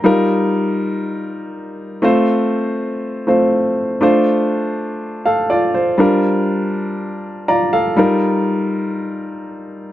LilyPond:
\new Staff \with { instrumentName = "Grand piano" } { \time 4/4 \key ees \lydian \tempo 4 = 121 << { r1 | r1 | r2 r8 <a' f''>8 <f' d''>8 c''8~ | c''8 r2 r8 <f' d'' bes''>8 <a' f''>8~ |
<a' f''>8 r2. r8 | } \\ { <g ees' f' bes'>1 | <a c' f' c''>2~ <a c' f' c''>8 <a c' f' c''>4. | <a d' f' c''>1 | <g d' f' bes'>1 |
<g ees' f' bes'>1 | } >> }